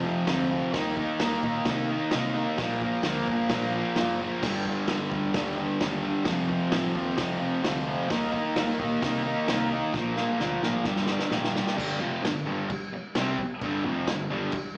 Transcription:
Already playing: fretless electric bass F1, distorted electric guitar F2
0.03 distorted electric guitar C3 F3
0.26 fretless electric bass D2, distorted electric guitar F2 C3 F3, snare, open hi-hat
0.49 distorted electric guitar C3 F3
0.73 fretless electric bass D#2, distorted electric guitar D#3 A#3 D#4, kick, snare, open hi-hat
0.96 distorted electric guitar A#3 D#4, kick
1.20 fretless electric bass D#2, distorted electric guitar D#3 A#3 D#4, snare, open hi-hat
1.43 fretless electric bass A#2, distorted electric guitar A#3 D#4, kick
1.65 fretless electric bass C3, distorted electric guitar D#3, kick, snare, open hi-hat
1.69 distorted electric guitar A#3 D#4
1.90 distorted electric guitar A#3 D#4
2.11 fretless electric bass C3, distorted electric guitar D#3 A#3, snare, open hi-hat
2.15 distorted electric guitar D#4
2.35 distorted electric guitar A#3 D#4
2.58 fretless electric bass A#1, distorted electric guitar A#2 F3 A#3, kick, snare, open hi-hat
2.81 distorted electric guitar F3 A#3, kick
3.03 fretless electric bass D2, distorted electric guitar A#2 F3, snare, open hi-hat
3.09 distorted electric guitar A#3
3.27 fretless electric bass G1, distorted electric guitar A#3, kick
3.32 distorted electric guitar F3
3.49 fretless electric bass A#1, distorted electric guitar A#2 F3, kick, snare, open hi-hat
3.54 distorted electric guitar A#3
3.73 distorted electric guitar F3 A#3
3.96 fretless electric bass F#1, distorted electric guitar A#2 F3 A#3, snare, open hi-hat
4.20 distorted electric guitar F3 A#3
4.41 fretless electric bass G1, distorted electric guitar G2 D3 G3, kick, snare, crash
4.65 distorted electric guitar D3 G3, kick
4.87 fretless electric bass G1, distorted electric guitar G2 D3 G3, snare, open hi-hat
5.10 fretless electric bass D2, distorted electric guitar D3 G3, kick
5.34 fretless electric bass D#2, distorted electric guitar G2 D3 G3, kick, snare, open hi-hat
5.57 distorted electric guitar D3 G3
5.80 fretless electric bass D#2, distorted electric guitar G2 D3, snare, open hi-hat
5.84 distorted electric guitar G3
6.04 distorted electric guitar D3 G3
6.25 fretless electric bass F1, distorted electric guitar F2 C3 F3, kick, snare, open hi-hat
6.49 distorted electric guitar C3 F3, kick
6.71 fretless electric bass A1, distorted electric guitar F2 C3 F3, snare, open hi-hat
6.95 fretless electric bass D#2, distorted electric guitar C3 F3, kick
7.17 fretless electric bass F1, distorted electric guitar F2 C3 F3, kick, snare, open hi-hat
7.38 distorted electric guitar C3 F3
7.62 fretless electric bass D2, distorted electric guitar F2 C3 F3, snare, open hi-hat
7.87 distorted electric guitar C3 F3
8.09 fretless electric bass D#2, distorted electric guitar D#3 A#3 D#4, kick, snare, open hi-hat
8.32 distorted electric guitar A#3 D#4, kick
8.56 fretless electric bass D#2, distorted electric guitar D#3 A#3 D#4, snare, open hi-hat
8.79 fretless electric bass A#2, distorted electric guitar A#3 D#4, kick
9.01 fretless electric bass C3, distorted electric guitar D#3 A#3 D#4, kick, snare, open hi-hat
9.23 distorted electric guitar A#3 D#4
9.47 fretless electric bass C2, distorted electric guitar D#3 A#3 D#4, snare, open hi-hat
9.71 distorted electric guitar A#3 D#4
9.94 fretless electric bass A#1, distorted electric guitar A#2 F3 A#3, kick, snare
10.17 distorted electric guitar F3 A#3, snare
10.39 fretless electric bass D2, distorted electric guitar A#2 F3 A#3, snare
10.63 fretless electric bass A1, distorted electric guitar F3 A#3, snare
10.84 fretless electric bass G1, distorted electric guitar G2 D3 G3, kick, snare
10.96 snare
11.06 distorted electric guitar G3, snare
11.11 distorted electric guitar D3
11.19 snare
11.30 fretless electric bass A#1, distorted electric guitar G2 D3 G3, snare
11.44 snare
11.54 distorted electric guitar D3 G3, snare
11.67 snare
11.76 fretless electric bass G1, distorted electric guitar G2 D3 G3, kick, crash
12.00 fretless electric bass F1, distorted electric guitar F2 C3 F3
12.23 fretless electric bass G1, distorted electric guitar G2 D3, snare, crash
12.45 fretless electric bass G1, distorted electric guitar G2 D3 G3
12.70 muted distorted electric guitar stroke, muted fretless electric bass stroke, kick, crash
12.93 muted distorted electric guitar stroke, muted fretless electric bass stroke
13.15 fretless electric bass C2, distorted electric guitar C3 G3 C4, snare, crash
13.39 muted distorted electric guitar stroke, kick
13.62 fretless electric bass G1, distorted electric guitar G2 D3 G3, kick, crash
13.84 fretless electric bass F1, distorted electric guitar F2 C3 F3
14.07 fretless electric bass G1, distorted electric guitar G2 D3, snare, crash
14.30 fretless electric bass G1, distorted electric guitar G2 D3 G3
14.52 muted distorted electric guitar stroke, kick, crash

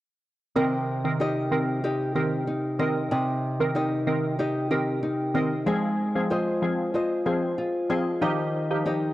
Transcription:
0.56 nylon-string guitar C3 D#5, synth pluck D#3 C4 A#4
1.04 synth pluck D#3 C4 A#4
1.20 nylon-string guitar D#4 G4 D#5
1.51 synth pluck D#3 C4 A#4
1.84 nylon-string guitar D#4 G4 D#5
2.15 synth pluck D#3 C4 A#4, nylon-string guitar G4
2.47 nylon-string guitar D#4
2.79 synth pluck D#3 C4 A#4, nylon-string guitar D#5
3.11 nylon-string guitar C3 D#5
3.60 synth pluck D#3 C4 A#4
3.75 nylon-string guitar D#4 G4 D#5
4.07 synth pluck D#3 C4 A#4
4.39 nylon-string guitar D#4 G4 D#5
4.71 synth pluck D#3 C4 A#4, nylon-string guitar G4
5.03 nylon-string guitar D#4
5.34 synth pluck D#3 C4 A#4, nylon-string guitar D#5
5.66 synth pluck F3 C4 G#4, nylon-string guitar G#3 D#5
6.15 synth pluck F3 C4 G#4
6.30 nylon-string guitar F4 C5 D#5
6.62 synth pluck F3 C4 G#4
6.94 nylon-string guitar F4 C5 D#5
7.26 synth pluck F3 C4 G#4, nylon-string guitar C5
7.58 nylon-string guitar F4
7.90 synth pluck F3 C4 G#4, nylon-string guitar D#5
8.21 nylon-string guitar D#3 D#5, synth pluck F3 D#4 G4
8.70 synth pluck F3 D#4 G4
8.86 nylon-string guitar D#4 G4 D#5

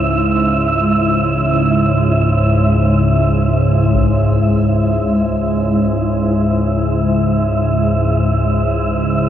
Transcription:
Already playing: synth drone C#2 G#2, ambient pad G#3 E4 C#5 E5, synth texture E5
3.95 taiko

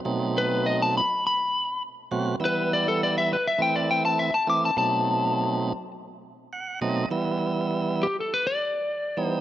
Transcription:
0.05 tonewheel organ B2 F#3 A3 C4 D#4
0.38 lead electric guitar B4
0.66 lead electric guitar D#5
0.82 lead electric guitar A5
0.97 lead electric guitar B5
1.27 lead electric guitar B5
2.11 tonewheel organ B2 F#3 A3 C4 F#4
2.40 tonewheel organ E3 G3 B3 E4
2.45 lead electric guitar B4
2.73 lead electric guitar D5
2.88 lead electric guitar A4
3.03 lead electric guitar D5
3.18 lead electric guitar E5
3.33 lead electric guitar B4
3.48 lead electric guitar E5
3.58 tonewheel organ E3 A3 C4 E4, lead electric guitar G5
3.76 lead electric guitar D5
3.91 lead electric guitar G5
4.05 lead electric guitar A5
4.19 lead electric guitar E5
4.34 lead electric guitar A5
4.47 tonewheel organ E3 A3 C4 E4, lead electric guitar D6
4.65 lead electric guitar A5
4.77 tonewheel organ B2 F#3 A3 C4 D#4, lead electric guitar A5
6.53 tonewheel organ F#5
6.81 tonewheel organ B2 F#3 A3 C4 D#4 D#5
7.11 tonewheel organ E3 G3 B3 E4
8.03 lead electric guitar G4
8.20 lead electric guitar A4
8.34 lead electric guitar B4
8.47 lead electric guitar D5
9.17 tonewheel organ E3 G3 B3 D#4
9.26 lead electric guitar C5

